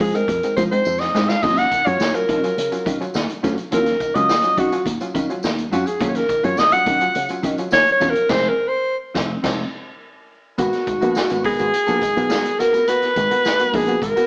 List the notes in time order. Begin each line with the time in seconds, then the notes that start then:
0.00 F3 G#3 D#4 G#4, kick, open hi-hat
0.14 G#3 C4 D#4 A#4, muted clean electric guitar stroke, closed hi-hat, tambourine
0.28 F2, muted clean electric guitar stroke, kick, closed hi-hat
0.43 G#3 C4 D#4, muted clean electric guitar stroke, closed hi-hat, tambourine
0.57 F3 G#3 D#4 F4 C5, kick, closed hi-hat, tambourine
0.71 G#3 C4 D#4 C5, muted clean electric guitar stroke, closed hi-hat
0.85 F2, tambourine
1.00 D#5, muted clean electric guitar stroke, snare
1.14 G#2 G#3 C4 D#4 F4, snare, tambourine
1.29 F5, muted clean electric guitar stroke, snare, tambourine
1.43 D#2 F#3 C#4 F4 D#5, kick, crash, tambourine
1.57 F#5, snare, closed hi-hat
1.72 D#3, muted clean electric guitar stroke, kick, closed hi-hat, tambourine
1.85 F#2 F#3 C#4 F4 C#5, closed hi-hat, tambourine
1.99 D#2, muted clean electric guitar stroke, snare, tambourine
2.14 F#3 C#4 F4 A#4, muted clean electric guitar stroke, closed hi-hat, tambourine
2.28 D#3 F#3 C#4 F#4, kick, closed hi-hat
2.43 F#3 C#4 F4, muted clean electric guitar stroke, closed hi-hat, tambourine
2.58 C#3, muted clean electric guitar stroke, closed hi-hat
2.72 F#3 C#4 F4, muted clean electric guitar stroke, closed hi-hat, tambourine
2.86 D#3 F#3 C#4 F4, kick, closed hi-hat, tambourine
3.00 F#3 C#4 F4, muted clean electric guitar stroke, closed hi-hat, tambourine
3.14 D#2 D#3, snare, tambourine
3.29 muted clean electric guitar stroke, closed hi-hat
3.43 D2 F#3 C#4 F4, kick, snare, closed hi-hat, tambourine
3.57 C#4 F4, muted clean electric guitar stroke, closed hi-hat, tambourine
3.71 D#2 F#3 C#4 F4 A#4, closed hi-hat, tambourine
3.86 snare, closed hi-hat
4.00 D#3, muted clean electric guitar stroke, kick, closed hi-hat, tambourine
4.15 C#2 F#3 C#4 F4 D#5, closed hi-hat
4.29 D#2, muted clean electric guitar stroke, snare, tambourine
4.43 F#3 C#4 F4, muted clean electric guitar stroke, closed hi-hat, tambourine
4.57 D#3 F#3 C#4 F#4, kick, closed hi-hat
4.72 F#3 C#4 F4, muted clean electric guitar stroke, closed hi-hat, tambourine
4.86 D#2, muted clean electric guitar stroke, kick, closed hi-hat
5.00 F#3 C#4 F4, muted clean electric guitar stroke, closed hi-hat, tambourine
5.14 D#3 F#3 C#4 F4, kick, closed hi-hat, tambourine
5.29 F#3 C#4 F4, muted clean electric guitar stroke, closed hi-hat, tambourine
5.43 D#2, snare, tambourine
5.57 muted clean electric guitar stroke, closed hi-hat
5.72 F#2 F#3 C#4 F4 F#4, closed hi-hat, tambourine
5.86 G#4, muted clean electric guitar stroke, closed hi-hat, tambourine
6.00 D#2 F#3 C#4 F4, kick, closed hi-hat, tambourine
6.09 C#5
6.15 A#4, snare, closed hi-hat
6.29 D#3, muted clean electric guitar stroke, kick, closed hi-hat, tambourine
6.43 F#2 F#3 C#4 F4 C#5, closed hi-hat
6.57 D#2 D#5, muted clean electric guitar stroke, snare, tambourine
6.71 F#3 C#4 F4 F#5, muted clean electric guitar stroke, closed hi-hat, tambourine
6.86 D#3 F#3 C#4 F#4, kick, closed hi-hat
7.00 F#3 C#4 F4, muted clean electric guitar stroke, closed hi-hat, tambourine
7.15 C#3, muted clean electric guitar stroke, closed hi-hat
7.29 F#3 C#4 F4, muted clean electric guitar stroke, closed hi-hat, tambourine
7.43 D#3 F#3 C#4 F4, kick, closed hi-hat, tambourine
7.58 F#3 C#4 F4, muted clean electric guitar stroke, closed hi-hat, tambourine
7.71 D#2 D#3 C#5, snare, tambourine
7.86 muted clean electric guitar stroke, closed hi-hat
7.92 C#5
8.00 E2 F#3 C#4 F4, kick, snare, closed hi-hat, tambourine
8.10 A#4
8.15 C#4 F4, muted clean electric guitar stroke, closed hi-hat
8.29 F1 G#3 C4 D#4 G#4 C5, kick, snare, crash
8.49 A#4
8.68 C5
9.14 F1 C4 D#4, kick, snare
9.43 F1 G#3 C4 D#4, kick, snare, crash
10.58 G#1 A#3 B3 F#4 A#4, kick, closed hi-hat, tambourine
10.73 snare, closed hi-hat
10.87 G#2 D#3, muted clean electric guitar stroke, kick, closed hi-hat, tambourine
11.01 A#1 A#3 B3 F#4 A#4, closed hi-hat, tambourine
11.15 muted slap bass stroke, snare, tambourine
11.29 G#1 A#3 B3 F#4, muted clean electric guitar stroke, closed hi-hat, tambourine
11.44 G#2 D#3 B3 F#4 G#4 A#4, kick, open hi-hat
11.58 G#1 A#3 B3 F#4, muted clean electric guitar stroke, closed hi-hat, tambourine
11.73 muted clean electric guitar stroke, closed hi-hat
11.86 A#1 A#3 B3 F#4 A#4, closed hi-hat, tambourine
12.01 G#2 D#3, muted clean electric guitar stroke, kick, closed hi-hat, tambourine
12.16 B1 A#3 B3 F#4, muted clean electric guitar stroke, closed hi-hat, tambourine
12.29 G#2 D#3 B3 F#4 A#4, snare, tambourine
12.45 closed hi-hat
12.58 A#3 B3 F#4 A#4, muted clean electric guitar stroke, snare, closed hi-hat, tambourine
12.73 B3 F#4 A#4, closed hi-hat, tambourine
12.87 A#3 B3 F#4 A#4 B4, closed hi-hat, tambourine
13.02 snare, closed hi-hat
13.16 G#1 G#2 D#3, kick, closed hi-hat, tambourine
13.31 A#3 B3 F#4 A#4, closed hi-hat
13.45 snare, tambourine
13.59 A#3 B3 F#4, muted clean electric guitar stroke, closed hi-hat, tambourine
13.73 A#1 G#2 D#3 B3 F#4 G#4 A#4, kick, open hi-hat
13.88 A#3 B3 F#4, muted clean electric guitar stroke, closed hi-hat, tambourine
14.02 G#1 A#4, muted clean electric guitar stroke, kick, closed hi-hat
14.16 A#3 B3 F#4 A#4, closed hi-hat, tambourine